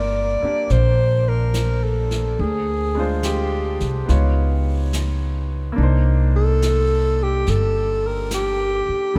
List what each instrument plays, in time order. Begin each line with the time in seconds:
Already playing: upright bass G1, grand piano G3 A#3 F4, alto saxophone D5
0.42 grand piano A#3 D4 G4, muted upright bass stroke
0.70 upright bass A#1, alto saxophone C5, brush sweep, snare
1.29 alto saxophone A#4
1.54 snare, hi-hat pedal
1.84 alto saxophone A4
2.11 snare
2.39 upright bass D2, alto saxophone G#4, brush sweep
2.95 grand piano G#3 D4
2.99 grand piano F4 C5
3.23 alto saxophone G4, snare, hi-hat pedal
3.80 upright bass C2, snare
4.06 upright bass C#2, grand piano B3 D#4 F4, brush sweep, snare
4.11 grand piano C#5
4.93 snare, hi-hat pedal
5.72 grand piano A#3 D4
5.77 upright bass C2, grand piano D#4, brush sweep
5.83 grand piano C5
6.36 alto saxophone A4
6.62 snare, hi-hat pedal
7.23 alto saxophone G4
7.47 upright bass G1, alto saxophone A4, brush sweep, snare
8.07 alto saxophone A#4
8.31 alto saxophone G4, snare, hi-hat pedal
8.88 muted upright bass stroke
9.14 upright bass F1, grand piano G3 D4